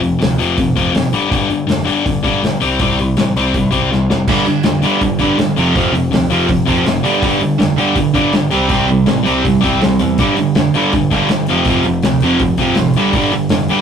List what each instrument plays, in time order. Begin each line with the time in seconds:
0.01 picked electric bass F1, distorted electric guitar F2 C3, open hi-hat
0.19 picked electric bass D2, distorted electric guitar F2 C3, snare, open hi-hat
0.38 picked electric bass F1, distorted electric guitar F2 C3 F3, open hi-hat
0.57 picked electric bass F1, distorted electric guitar F2 C3, kick, open hi-hat
0.76 picked electric bass F1, distorted electric guitar F2 C3 F3, kick, open hi-hat
0.93 picked electric bass F#1, distorted electric guitar F2 C3, snare, open hi-hat
1.13 picked electric bass G1, distorted electric guitar G2 D3 G3, open hi-hat
1.29 picked electric bass G1, distorted electric guitar G2 D3 G3, kick, open hi-hat
1.50 picked electric bass G1, distorted electric guitar G2 D3, open hi-hat
1.67 picked electric bass F1, distorted electric guitar G2 D3, snare, open hi-hat
1.85 picked electric bass G1, distorted electric guitar G2 D3 G3, open hi-hat
2.04 picked electric bass G1, distorted electric guitar G2 D3, kick, open hi-hat
2.23 picked electric bass G1, distorted electric guitar G2 D3 G3, kick, open hi-hat
2.43 picked electric bass G1, distorted electric guitar G2 D3, snare, open hi-hat
2.60 picked electric bass C2, distorted electric guitar C3 G3 C4, open hi-hat
2.79 picked electric bass C2, distorted electric guitar C3 G3 C4, kick, open hi-hat
2.99 picked electric bass C2, distorted electric guitar C3 G3, open hi-hat
3.17 picked electric bass A1, distorted electric guitar C3 G3, snare, open hi-hat
3.36 picked electric bass C2, distorted electric guitar C3 G3 C4, open hi-hat
3.54 picked electric bass C2, distorted electric guitar C3 G3, kick, open hi-hat
3.71 picked electric bass C2, distorted electric guitar C3 G3 C4, kick, open hi-hat
3.91 picked electric bass C2, distorted electric guitar C3 G3, snare
4.10 picked electric bass F1, distorted electric guitar C3 G3, snare
4.28 picked electric bass G1, distorted electric guitar G2 D3 G3, kick, open hi-hat, crash
4.46 picked electric bass G1, distorted electric guitar G2 D3, open hi-hat
4.63 distorted electric guitar G2 D3, snare, open hi-hat
4.67 picked electric bass F1
4.82 picked electric bass G1, distorted electric guitar G2 D3 G3, open hi-hat
5.01 picked electric bass G1, distorted electric guitar G2 D3, kick, open hi-hat
5.19 picked electric bass G1, distorted electric guitar G2 D3 G3, kick, open hi-hat
5.38 picked electric bass G1, distorted electric guitar G2 D3, snare, open hi-hat
5.56 picked electric bass F1, distorted electric guitar F2 C3 F3, open hi-hat
5.75 picked electric bass F1, distorted electric guitar F2 C3 F3, kick, open hi-hat
5.92 picked electric bass F1, distorted electric guitar F2 C3, open hi-hat
6.11 picked electric bass D2, distorted electric guitar F2 C3, snare, open hi-hat
6.30 picked electric bass F1, distorted electric guitar F2 C3 F3, open hi-hat
6.48 picked electric bass F1, distorted electric guitar F2 C3, kick, open hi-hat
6.66 picked electric bass F1, distorted electric guitar F2 C3 F3, kick, open hi-hat
6.85 picked electric bass F1, distorted electric guitar F2 C3, snare, open hi-hat
7.03 picked electric bass G1, distorted electric guitar G2 D3 G3, open hi-hat
7.22 picked electric bass G1, distorted electric guitar G2 D3 G3, kick, open hi-hat
7.40 picked electric bass G1, distorted electric guitar G2 D3, open hi-hat
7.59 picked electric bass F1, distorted electric guitar G2 D3, snare, open hi-hat
7.78 picked electric bass G1, distorted electric guitar G2 D3 G3, open hi-hat
7.96 picked electric bass G1, distorted electric guitar G2 D3, kick, open hi-hat
8.14 picked electric bass G1, distorted electric guitar G2 D3 G3, kick, open hi-hat
8.33 picked electric bass G1, distorted electric guitar G2 D3, snare, open hi-hat
8.50 picked electric bass C2, distorted electric guitar C3 G3 C4, open hi-hat
8.68 picked electric bass C2, distorted electric guitar C3 G3 C4, kick, open hi-hat
8.87 picked electric bass C2, distorted electric guitar C3 G3, open hi-hat
9.06 picked electric bass A1, distorted electric guitar C3 G3, snare, open hi-hat
9.23 distorted electric guitar C3 G3 C4, open hi-hat
9.28 picked electric bass C2
9.41 distorted electric guitar C3 G3, kick, open hi-hat
9.46 picked electric bass C2, overdriven electric guitar C3
9.61 picked electric bass C2, distorted electric guitar C3 G3 C4, kick, open hi-hat
9.80 picked electric bass C2, distorted electric guitar C3 G3, snare, open hi-hat
9.99 picked electric bass E2, distorted electric guitar C3 G3, open hi-hat
10.18 picked electric bass G1, distorted electric guitar G2 D3 G3, kick, open hi-hat
10.36 picked electric bass G1, distorted electric guitar G2 D3, open hi-hat
10.55 picked electric bass F1, distorted electric guitar G2 D3, snare, open hi-hat
10.73 picked electric bass G1, distorted electric guitar G2 D3 G3, open hi-hat
10.93 picked electric bass G1, distorted electric guitar G2 D3, kick, open hi-hat
11.11 picked electric bass G1, distorted electric guitar G2 D3 G3, kick, open hi-hat
11.29 picked electric bass G1, distorted electric guitar G2 D3, snare, open hi-hat
11.47 picked electric bass F1, distorted electric guitar F2 C3 F3, open hi-hat
11.65 picked electric bass F1, distorted electric guitar F2 C3 F3, kick, open hi-hat
11.83 picked electric bass F1, distorted electric guitar F2 C3, open hi-hat
12.02 picked electric bass D2, distorted electric guitar F2 C3, snare, open hi-hat
12.20 picked electric bass F1, distorted electric guitar F2 C3 F3, open hi-hat
12.39 picked electric bass F1, distorted electric guitar F2 C3, kick, open hi-hat
12.57 picked electric bass F1, distorted electric guitar F2 C3 F3, kick, open hi-hat
12.75 picked electric bass A1, distorted electric guitar F2 C3, snare, open hi-hat
12.94 picked electric bass G1, distorted electric guitar G2 D3 G3, open hi-hat
13.13 picked electric bass G1, distorted electric guitar G2 D3 G3, kick, open hi-hat
13.31 picked electric bass G1, distorted electric guitar G2 D3, open hi-hat
13.49 picked electric bass F1, distorted electric guitar G2 D3, snare, open hi-hat
13.68 picked electric bass G1, distorted electric guitar G2 D3 G3, open hi-hat